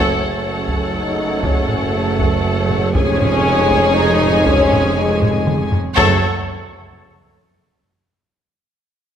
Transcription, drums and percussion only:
0.69 taiko
1.43 taiko
1.68 taiko low-mid
2.19 taiko
2.69 taiko low-mid
2.95 taiko
3.21 taiko low-mid
3.71 taiko
4.22 taiko low-mid
4.46 taiko
4.73 taiko low-mid
5.22 taiko low-mid
5.47 taiko mid
5.72 taiko low
5.98 taiko

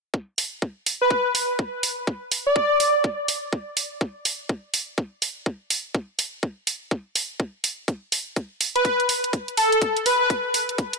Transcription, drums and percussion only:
0.14 kick
0.38 open hi-hat
0.62 kick
0.86 open hi-hat
1.11 kick
1.35 open hi-hat
1.59 kick
1.83 open hi-hat
2.07 kick
2.32 open hi-hat
2.56 kick
2.80 open hi-hat
3.04 kick
3.28 open hi-hat
3.53 kick
3.77 open hi-hat
4.01 kick
4.25 open hi-hat
4.49 kick
4.74 open hi-hat
4.98 kick
5.22 open hi-hat
5.46 kick
5.70 open hi-hat
5.95 kick
6.19 open hi-hat
6.43 kick
6.67 open hi-hat
6.91 kick
7.16 open hi-hat
7.40 kick
7.64 open hi-hat
7.88 kick, closed hi-hat
8.12 open hi-hat
8.36 kick, closed hi-hat
8.61 open hi-hat
8.76 closed hi-hat
8.85 kick, closed hi-hat
9.00 closed hi-hat
9.09 open hi-hat
9.24 closed hi-hat
9.33 kick, closed hi-hat
9.48 closed hi-hat
9.57 open hi-hat
9.72 closed hi-hat
9.82 kick, closed hi-hat
9.97 closed hi-hat
10.06 open hi-hat
10.30 kick, closed hi-hat
10.54 open hi-hat
10.69 closed hi-hat
10.78 kick, closed hi-hat
10.93 closed hi-hat

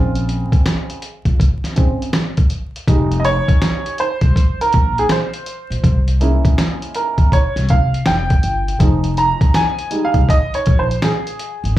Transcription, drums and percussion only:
0.15 closed hi-hat
0.29 closed hi-hat
0.52 kick, closed hi-hat
0.66 snare, closed hi-hat
0.90 closed hi-hat
1.02 closed hi-hat
1.25 kick, closed hi-hat
1.40 kick, closed hi-hat
1.64 snare, closed hi-hat
1.76 kick, closed hi-hat
2.02 closed hi-hat
2.13 snare, closed hi-hat
2.37 kick, closed hi-hat
2.50 closed hi-hat
2.76 closed hi-hat
2.88 kick, closed hi-hat
3.12 closed hi-hat
3.25 closed hi-hat
3.48 kick, closed hi-hat
3.62 snare, closed hi-hat
3.86 closed hi-hat
3.98 closed hi-hat
4.21 kick, closed hi-hat
4.36 kick, closed hi-hat
4.61 closed hi-hat
4.73 kick, closed hi-hat
4.98 closed hi-hat
5.09 snare, closed hi-hat
5.34 closed hi-hat
5.46 closed hi-hat
5.72 closed hi-hat
5.84 kick, closed hi-hat
6.08 closed hi-hat
6.21 closed hi-hat
6.45 kick, closed hi-hat
6.58 snare, closed hi-hat
6.82 closed hi-hat
6.94 closed hi-hat
7.18 kick, closed hi-hat
7.32 kick, closed hi-hat
7.56 snare, closed hi-hat
7.69 kick, closed hi-hat
7.94 closed hi-hat
8.06 snare, closed hi-hat
8.30 kick, closed hi-hat
8.43 closed hi-hat
8.68 closed hi-hat
8.80 kick, closed hi-hat
9.04 closed hi-hat
9.17 closed hi-hat
9.41 kick, closed hi-hat
9.54 snare, closed hi-hat
9.79 closed hi-hat
9.91 closed hi-hat
10.14 kick, closed hi-hat
10.29 kick, closed hi-hat
10.54 closed hi-hat
10.66 kick, closed hi-hat
10.91 closed hi-hat
11.02 snare, closed hi-hat
11.27 closed hi-hat
11.39 closed hi-hat
11.65 closed hi-hat

